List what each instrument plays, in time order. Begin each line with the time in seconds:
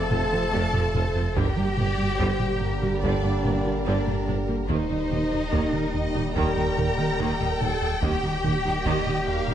Already playing: sub bass F1, trombone section C3 F3, french horn section A3 A4, cello section A4, violin section D5 A5
0.10 tuba F1, double bass section F2, analog synth bass F2, viola section A3 F4, violin section C5, taiko low-mid
0.32 double bass section F2, analog synth bass F3, viola section F3 C4
0.51 tuba F1, double bass section F2, analog synth bass F2, viola section C3 A3, violin section D5
0.73 double bass section F2, analog synth bass F2, viola section F3 C4, taiko low-mid
0.94 tuba F1, double bass section F2, analog synth bass F2, viola section A3 F4, violin section C5, taiko low-mid
1.15 double bass section F2, analog synth bass F2, viola section F3 C4
1.35 sub bass G1, tuba G1, analog synth bass G2, double bass section G2, trombone section D3 G3, viola section D3 G3, french horn section A#3 G4, cello section G4, violin section A#4 G5, taiko
1.56 double bass section G2, analog synth bass G3, viola section G3 A#3
1.77 tuba G1, double bass section G2, analog synth bass G3, viola section A#3 D4, violin section D5, taiko low-mid
1.98 double bass section G2, analog synth bass G3, viola section G3 A#3
2.19 tuba G1, analog synth bass G2, double bass section G2, viola section D3 G3, violin section C5, taiko
2.40 analog synth bass G3, taiko low-mid
2.60 analog synth bass G2, violin section A#4
2.81 double bass section G2, analog synth bass G3, viola section G3 A#3, taiko low-mid
3.01 tuba G1, analog synth bass G2, double bass section G2, viola section D3 G3, cello section D4, violin section D5, taiko
3.23 double bass section G2, analog synth bass G2, viola section G3 A#3
3.43 tuba G1, double bass section G2, analog synth bass G2, viola section A#3 D4, violin section A#4, taiko low-mid
3.65 double bass section G2, viola section G3 A#3, analog synth bass G3
3.86 tuba G1, double bass section G2, analog synth bass G2, viola section D3 G3, cello section D4, violin section D5
4.06 double bass section G2, analog synth bass G2, viola section G3 A#3, taiko low-mid
4.27 tuba G1, analog synth bass G2, double bass section G2, viola section A#3 D4, taiko low-mid
4.48 double bass section G2, analog synth bass G2, viola section G3 A#3
4.68 sub bass D#1, double bass section D#2, tuba D#2, analog synth bass D#2, viola section D#3 A#3, trombone section D#3 G3, french horn section A#3 G4, cello section D#4, violin section C5 D#5, taiko
4.89 double bass section D#2, analog synth bass D#3, viola section G3 D#4
5.10 tuba D#2, double bass section D#2, analog synth bass D#3, viola section A#3 G4, taiko low-mid
5.31 double bass section D#2, analog synth bass D#3, viola section G3 D#4
5.52 tuba D#2, analog synth bass D#2, double bass section D#2, viola section D#3 A#3, violin section A#4, taiko
5.73 analog synth bass D#3, taiko low-mid
5.94 analog synth bass D#2, violin section D#5
6.15 double bass section D#2, analog synth bass D#3, viola section G3 D#4, taiko low-mid
6.34 double bass section D#2, tuba D#2, analog synth bass D#2, viola section D#3 A#3, cello section A#4, violin section G5 A#5, taiko
6.56 double bass section D#2, analog synth bass D#2, viola section G3 D#4
6.77 double bass section D#2, tuba D#2, analog synth bass D#2, viola section A#3 G4, taiko low-mid
6.98 double bass section D#2, analog synth bass D#3, viola section G3 D#4
7.19 double bass section D#2, tuba D#2, analog synth bass D#2, viola section D#3 A#3
7.40 double bass section D#2, analog synth bass D#2, viola section G3 D#4, taiko low-mid
7.59 tuba D#2, analog synth bass D#2, double bass section D#2, viola section A#3 G4, cello section A4, violin section A5, taiko low-mid
7.81 analog synth bass D#2, double bass section D#2, viola section G3 D#4
8.02 sub bass D#1, tuba D#2, analog synth bass D#2, double bass section D#2, trombone section D#3 G3, viola section D#3 A#3, french horn section A#3 G4, cello section G4, violin section G5, taiko
8.23 double bass section D#2, analog synth bass D#3, viola section G3 D#4
8.44 tuba D#2, double bass section D#2, analog synth bass D#3, viola section A#3 G4, taiko low-mid
8.65 double bass section D#2, analog synth bass D#3, viola section G3 D#4
8.85 analog synth bass D#2, tuba D#2, double bass section D#2, viola section D#3 A#3, violin section D#5, taiko
9.06 analog synth bass D#3, taiko low-mid
9.27 analog synth bass D#2, violin section F5
9.48 double bass section D#2, analog synth bass D#3, viola section G3 D#4, taiko low-mid